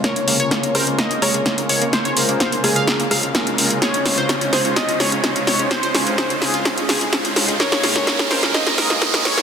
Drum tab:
HH |xxoxxxoxxxoxxxox|xxoxxxoxxxoxxxox|xxoxxxoxxxoxxxox|xxoxxxoxxxoxxxox|
SD |o---o-r-o-r-o---|o---o-r-o-r-o---|o-o-o-o-o-o-o-o-|o-o-o-o-o-o-o-o-|
BD |o---o---o---o---|o---o---o-o-o---|o---o---o---o---|o---o---o-o-o---|

HH |xxoxxxoxxxoxxxox|
SD |oooooooooooooooo|
BD |o---o---o---o---|